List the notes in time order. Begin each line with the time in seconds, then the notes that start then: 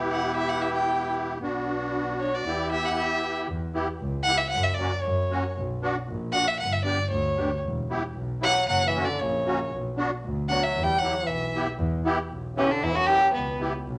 Already playing: E1 B3 E4 G4
0.12 F#5
0.36 E5
0.49 F#5
0.61 E5
0.74 G5
1.41 B1 B3 D4 F#4
2.20 C#5
2.34 D5
2.44 E2 B3 E4 G4
2.72 E5
2.85 E5 F#5
2.96 E5
3.48 E2
3.74 B3 E4 G4
4.00 C#2
4.23 B3 E4 F#5
4.28 G4
4.38 E5
4.50 F#2 F#5
4.63 E5
4.74 A#3 D5
4.79 C#4 F#4
5.01 F#2 C#5
5.31 A#3 C#4 F#4
5.56 B1
5.82 B3 D4 F#4
6.08 A#1
6.32 B3 D4 F#4 F#5
6.48 E5
6.60 G1 F#5
6.73 E5
6.84 B3 D4 G4 D5
7.10 D2 C#5
7.36 B3 D4 G4
7.64 E1
7.90 B3 E4 G4
8.15 B1
8.41 F#3 B3 E4 G4 F#5
8.68 F#1 F#3 F#5
8.85 E3 E5
8.95 A#3 C#4 F#4
9.02 D3 D5
9.20 A#1 C#3 C#5
9.46 A#3 C#4 F#4
9.71 B1
9.97 B3 D4 F#4
10.25 D2
10.49 F#3 B3 D4 F#4 F#5
10.63 E5
10.75 E2
10.83 G3 G5
10.98 F#3 B3 E4 G4 F#5
11.25 B1 E3 E5
11.55 B3 E4 G4
11.79 E2
12.04 B3 E4 G4
12.31 B1
12.55 C#3 B3 C#4 E4 G4
12.68 D3 D4
12.82 E2 E4
12.94 F#2 F#4
13.06 B3 E4 G4
13.33 C#2 B2 B3
13.59 B3 E4 G4
13.87 B1